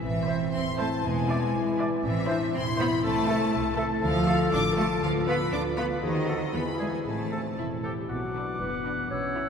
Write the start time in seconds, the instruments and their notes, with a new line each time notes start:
0.02 double bass section A1, harp A2, cello section E3, clarinet C4, french horn section E4 C5, violin section E5
0.20 harp E3
0.28 viola section E4 C5, oboe C5, violin section E5, flute E5
0.37 harp A3
0.54 double bass section E1, harp C4, cello section C4, violin section C6
0.71 harp A4
0.79 cello section A3, viola section E4 C5, oboe C5, violin section E5 A5, flute E5
0.87 harp C4
1.04 double bass section E1, harp E2, cello section G#3, clarinet B3, french horn section B4, violin section G#5
1.22 harp B2
1.29 viola section E4 D5, oboe D5, violin section E5, flute E5
1.38 harp D4
1.54 double bass section B1, clarinet E4, harp E4
1.71 harp B4
1.78 viola section E4 D5, oboe D5, violin section E5, flute E5
1.88 harp E4
2.04 double bass section A1, harp A2, cello section E3, clarinet C4, french horn section E4 C5, violin section E5
2.21 harp E3
2.29 clarinet D4, viola section E4 C5, oboe C5, violin section E5, flute E5
2.38 harp C4
2.54 double bass section E1, cello section C4, clarinet E4, harp E4, violin section C6
2.72 harp A4
2.78 cello section B3, viola section E4 C5, oboe C5, violin section E5 B5, flute E5
2.88 harp E4
3.04 double bass section C2, harp C3, cello section A3, clarinet A4, french horn section A4, violin section A5
3.21 harp C4
3.29 viola section E4 A4, oboe A4, flute E5, violin section E5
3.37 harp A3
3.53 double bass section C2, harp E4
3.70 harp A4
3.78 viola section E4 A4, oboe A4, flute E5, violin section E5
3.86 harp E4
4.03 double bass section D2, harp D3, cello section F3, french horn section F4, violin section F5
4.20 harp A3
4.28 viola section F4 A4, oboe A4, violin section D5, flute F5
4.36 harp D4
4.52 double bass section A1, cello section D4, harp F4, violin section D6
4.69 harp A4
4.77 cello section A3, viola section F4 A4, oboe A4, violin section D5 A5, flute F5
4.86 harp F4
5.03 double bass section D2, harp D3, cello section F3, french horn section B4, violin section F5
5.20 harp B3
5.27 cello section B3, viola section F4 B4, oboe B4, violin section D5 B5, flute F5
5.37 harp D4
5.52 double bass section D2, cello section D4, harp F4, clarinet F4, violin section D6
5.70 harp B4
5.77 cello section B3, viola section F4 B4, oboe B4, violin section D5 B5, flute F5
5.87 harp F4
6.02 double bass section D#2, cello section D#3, harp D#3, french horn section F#4 C5, clarinet G#4, violin section D#5
6.20 harp C4
6.27 clarinet F#4, viola section F#4 A4, oboe A4, violin section C5, flute F#5
6.37 harp F#4 A4
6.53 double bass section E2, harp E3, cello section B3, clarinet E4, french horn section G#4 B4, violin section B5
6.72 harp D4
6.79 cello section G#3, viola section E4 G#4, oboe G#4, violin section D5 G#5, flute D5
6.89 harp E4 G#4
6.93 cello section G#3, violin section G#5
7.05 double bass section A1, harp A2, cello section A3, clarinet C4, french horn section A4 C5, violin section A5
7.24 harp E3
7.31 viola section E4 A4, oboe A4, violin section C5, flute C5
7.42 harp C4
7.57 double bass section E1, viola section E4, harp E4
7.76 harp A4
7.83 viola section G4, oboe A4, violin section C5, flute C5
7.93 harp E4
7.97 french horn section G3, clarinet G4
8.09 double bass section B1, harp B2, cello section B2, french horn section F#3, clarinet F#4, oboe F#5, flute D6
8.35 harp B3, viola section D4, violin section F#4 B5
8.60 double bass section F#1, cello section F#2, french horn section B3, harp F#4, clarinet B4
8.86 viola section D4, violin section F#4 B5, harp B4
9.10 double bass section B1, cello section B2, harp B2, french horn section C#4, clarinet C#5, flute E6
9.36 harp A#3, viola section E4, violin section F#4 A#5